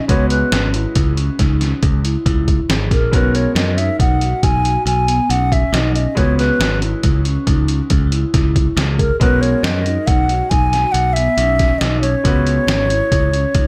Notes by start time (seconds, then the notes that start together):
0.08 C#2 G#3 B3 C#4 F#4 B4 C#5, kick, closed hi-hat
0.30 B4, closed hi-hat
0.52 G#1 C#4, snare, closed hi-hat
0.73 E4, closed hi-hat
0.95 C#2, kick, closed hi-hat
1.17 C#4, closed hi-hat
1.39 C#2 D#4, kick, snare, closed hi-hat
1.60 C#4, snare, closed hi-hat
1.83 C#2, kick, closed hi-hat
2.04 E4, closed hi-hat
2.26 C#2 E4, kick, closed hi-hat
2.48 kick, closed hi-hat
2.69 G#1 G#4, snare, closed hi-hat
2.91 A#1 G#4 A#4, kick, snare, closed hi-hat
3.11 B1 G#3 B3 C#4 F#4 A#4 B4, kick, closed hi-hat
3.35 C#5, closed hi-hat
3.55 F#2 C#4 D#5, snare, closed hi-hat
3.77 D#4 E5, closed hi-hat
3.99 B1 F#5, kick, closed hi-hat
4.21 F#4, closed hi-hat
4.43 B1 D#4 G#5, kick, closed hi-hat
4.65 F#4, closed hi-hat
4.86 B1 G#5, closed hi-hat
5.08 B3, closed hi-hat
5.29 B1 C#4 F#5, closed hi-hat
5.52 E5, kick, closed hi-hat
5.73 B1 D#4 D#5, snare, closed hi-hat
5.95 C#4 D#5, closed hi-hat
6.15 C#2 G#3 B3 C#4 F#4 B4 C#5, kick, closed hi-hat
6.39 B4, snare, closed hi-hat
6.60 G#1, snare, closed hi-hat
6.82 E4, closed hi-hat
7.03 C#2, kick, closed hi-hat
7.25 C#4, closed hi-hat
7.47 C#2 D#4, kick, closed hi-hat
7.68 C#4, closed hi-hat
7.90 C#2, kick, closed hi-hat
8.12 E4, closed hi-hat
8.33 C#2 E4, kick, snare, closed hi-hat
8.56 kick, closed hi-hat
8.77 C#2 G#4, snare, closed hi-hat
8.99 G#4 A#4, kick, closed hi-hat
9.20 B1 G#3 B3 C#4 F#4 A#4 B4, kick, closed hi-hat
9.41 C#5, closed hi-hat
9.63 F#2 C#4 D#5, snare, closed hi-hat
9.86 D#4, closed hi-hat
10.07 B1 F#5, kick, closed hi-hat
10.29 F#4, closed hi-hat
10.50 B1 D#4 G#5, kick, closed hi-hat
10.73 F#4, snare, closed hi-hat
10.92 B1 F#5, closed hi-hat
11.13 B3 E5, closed hi-hat
11.37 B1 C#4, closed hi-hat
11.59 kick, snare, closed hi-hat
11.78 B1 D#4 D#5, snare, closed hi-hat
12.01 C#4 C#5, closed hi-hat
12.24 C#2 G#3 B3 C#4 F#4 B4, kick, closed hi-hat
12.47 closed hi-hat
12.67 G#1 C#4, snare, closed hi-hat
12.90 E4, closed hi-hat
13.12 C#2, kick, closed hi-hat
13.33 C#4, closed hi-hat
13.55 C#2 D#4, kick, closed hi-hat